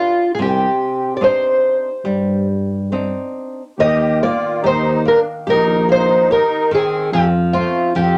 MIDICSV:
0, 0, Header, 1, 5, 480
1, 0, Start_track
1, 0, Key_signature, -3, "minor"
1, 0, Tempo, 825309
1, 238, Time_signature, 4, 2, 24, 8
1, 1201, Tempo, 860832
1, 2168, Key_signature, -3, "major"
1, 2641, Tempo, 827586
1, 4689, End_track
2, 0, Start_track
2, 0, Title_t, "Twelve-string acoustic guitar"
2, 0, Program_c, 0, 25
2, 0, Note_on_c, 0, 65, 82
2, 199, Note_off_c, 0, 65, 0
2, 201, Note_on_c, 0, 68, 68
2, 239, Note_off_c, 0, 68, 0
2, 245, Note_on_c, 0, 67, 86
2, 676, Note_off_c, 0, 67, 0
2, 679, Note_on_c, 0, 74, 60
2, 717, Note_off_c, 0, 74, 0
2, 720, Note_on_c, 0, 72, 81
2, 1420, Note_off_c, 0, 72, 0
2, 2170, Note_on_c, 0, 75, 95
2, 2406, Note_off_c, 0, 75, 0
2, 2408, Note_on_c, 0, 74, 90
2, 2627, Note_off_c, 0, 74, 0
2, 2650, Note_on_c, 0, 72, 85
2, 2889, Note_off_c, 0, 72, 0
2, 2892, Note_on_c, 0, 70, 81
2, 2956, Note_off_c, 0, 70, 0
2, 3135, Note_on_c, 0, 70, 90
2, 3375, Note_off_c, 0, 70, 0
2, 3378, Note_on_c, 0, 72, 84
2, 3609, Note_off_c, 0, 72, 0
2, 3612, Note_on_c, 0, 70, 78
2, 3856, Note_off_c, 0, 70, 0
2, 3858, Note_on_c, 0, 68, 82
2, 4081, Note_off_c, 0, 68, 0
2, 4083, Note_on_c, 0, 67, 83
2, 4148, Note_off_c, 0, 67, 0
2, 4314, Note_on_c, 0, 65, 77
2, 4559, Note_off_c, 0, 65, 0
2, 4562, Note_on_c, 0, 67, 79
2, 4689, Note_off_c, 0, 67, 0
2, 4689, End_track
3, 0, Start_track
3, 0, Title_t, "Accordion"
3, 0, Program_c, 1, 21
3, 2161, Note_on_c, 1, 67, 80
3, 2385, Note_off_c, 1, 67, 0
3, 2393, Note_on_c, 1, 65, 69
3, 2618, Note_off_c, 1, 65, 0
3, 2625, Note_on_c, 1, 63, 77
3, 2860, Note_off_c, 1, 63, 0
3, 2879, Note_on_c, 1, 62, 66
3, 2989, Note_off_c, 1, 62, 0
3, 3125, Note_on_c, 1, 63, 79
3, 3350, Note_off_c, 1, 63, 0
3, 3374, Note_on_c, 1, 63, 71
3, 3595, Note_off_c, 1, 63, 0
3, 3605, Note_on_c, 1, 63, 71
3, 3831, Note_off_c, 1, 63, 0
3, 3850, Note_on_c, 1, 60, 70
3, 4071, Note_off_c, 1, 60, 0
3, 4095, Note_on_c, 1, 60, 66
3, 4200, Note_off_c, 1, 60, 0
3, 4333, Note_on_c, 1, 57, 64
3, 4551, Note_off_c, 1, 57, 0
3, 4576, Note_on_c, 1, 60, 70
3, 4689, Note_off_c, 1, 60, 0
3, 4689, End_track
4, 0, Start_track
4, 0, Title_t, "Nylon-string guitar"
4, 0, Program_c, 2, 24
4, 0, Note_on_c, 2, 62, 49
4, 0, Note_on_c, 2, 67, 47
4, 0, Note_on_c, 2, 71, 54
4, 136, Note_off_c, 2, 62, 0
4, 137, Note_off_c, 2, 67, 0
4, 137, Note_off_c, 2, 71, 0
4, 225, Note_on_c, 2, 48, 63
4, 695, Note_off_c, 2, 48, 0
4, 702, Note_on_c, 2, 60, 45
4, 705, Note_on_c, 2, 62, 42
4, 708, Note_on_c, 2, 63, 49
4, 1097, Note_off_c, 2, 60, 0
4, 1098, Note_off_c, 2, 62, 0
4, 1099, Note_off_c, 2, 63, 0
4, 1191, Note_on_c, 2, 55, 56
4, 1664, Note_off_c, 2, 55, 0
4, 1678, Note_on_c, 2, 60, 40
4, 1680, Note_on_c, 2, 62, 38
4, 1681, Note_on_c, 2, 63, 45
4, 2068, Note_off_c, 2, 60, 0
4, 2069, Note_off_c, 2, 62, 0
4, 2069, Note_off_c, 2, 63, 0
4, 2167, Note_on_c, 2, 51, 61
4, 2408, Note_on_c, 2, 58, 48
4, 2635, Note_on_c, 2, 67, 51
4, 2636, Note_off_c, 2, 58, 0
4, 2875, Note_off_c, 2, 67, 0
4, 2876, Note_on_c, 2, 58, 52
4, 3115, Note_off_c, 2, 58, 0
4, 3117, Note_on_c, 2, 67, 53
4, 3355, Note_off_c, 2, 67, 0
4, 3362, Note_on_c, 2, 58, 54
4, 3598, Note_off_c, 2, 58, 0
4, 3604, Note_on_c, 2, 67, 54
4, 3832, Note_off_c, 2, 51, 0
4, 3838, Note_on_c, 2, 51, 55
4, 3840, Note_off_c, 2, 67, 0
4, 4075, Note_off_c, 2, 51, 0
4, 4083, Note_on_c, 2, 53, 62
4, 4319, Note_on_c, 2, 60, 50
4, 4550, Note_off_c, 2, 53, 0
4, 4552, Note_off_c, 2, 60, 0
4, 4557, Note_on_c, 2, 53, 54
4, 4689, Note_off_c, 2, 53, 0
4, 4689, End_track
5, 0, Start_track
5, 0, Title_t, "Tuba"
5, 0, Program_c, 3, 58
5, 232, Note_on_c, 3, 36, 83
5, 388, Note_off_c, 3, 36, 0
5, 1190, Note_on_c, 3, 43, 79
5, 1823, Note_off_c, 3, 43, 0
5, 2162, Note_on_c, 3, 39, 95
5, 2472, Note_off_c, 3, 39, 0
5, 2634, Note_on_c, 3, 39, 84
5, 2952, Note_off_c, 3, 39, 0
5, 3121, Note_on_c, 3, 34, 99
5, 3648, Note_off_c, 3, 34, 0
5, 4078, Note_on_c, 3, 41, 95
5, 4390, Note_off_c, 3, 41, 0
5, 4555, Note_on_c, 3, 41, 87
5, 4689, Note_off_c, 3, 41, 0
5, 4689, End_track
0, 0, End_of_file